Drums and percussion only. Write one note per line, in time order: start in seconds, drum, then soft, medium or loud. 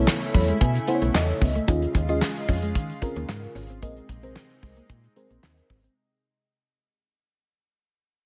0.07 snare loud
0.07 clap medium
0.22 closed hi-hat medium
0.34 kick loud
0.34 open hi-hat medium
0.48 closed hi-hat medium
0.61 kick loud
0.61 closed hi-hat medium
0.75 closed hi-hat medium
0.87 closed hi-hat medium
1.02 closed hi-hat soft
1.15 snare loud
1.15 clap loud
1.29 closed hi-hat soft
1.42 kick loud
1.42 open hi-hat medium
1.55 closed hi-hat soft
1.68 kick loud
1.68 closed hi-hat medium
1.82 closed hi-hat soft
1.95 kick loud
1.95 closed hi-hat medium
2.09 closed hi-hat soft
2.22 snare loud
2.22 clap medium
2.36 closed hi-hat medium
2.48 kick medium
2.48 open hi-hat medium
2.62 closed hi-hat medium
2.75 kick loud
2.75 closed hi-hat medium
2.90 closed hi-hat medium
3.02 kick loud
3.02 closed hi-hat medium
3.16 closed hi-hat soft
3.29 snare loud
3.29 clap medium
3.44 closed hi-hat soft
3.56 open hi-hat medium
3.70 closed hi-hat soft
3.83 kick loud
3.83 closed hi-hat medium
3.97 closed hi-hat soft
4.09 kick medium
4.09 closed hi-hat medium
4.23 closed hi-hat soft
4.36 snare loud
4.36 clap medium
4.50 closed hi-hat medium
4.63 kick medium
4.63 open hi-hat medium
4.77 closed hi-hat medium
4.90 kick loud
4.90 closed hi-hat medium
5.04 closed hi-hat medium
5.16 closed hi-hat medium
5.31 closed hi-hat soft
5.43 snare loud
5.43 clap loud
5.58 closed hi-hat soft
5.70 kick medium
5.70 open hi-hat medium
5.84 closed hi-hat soft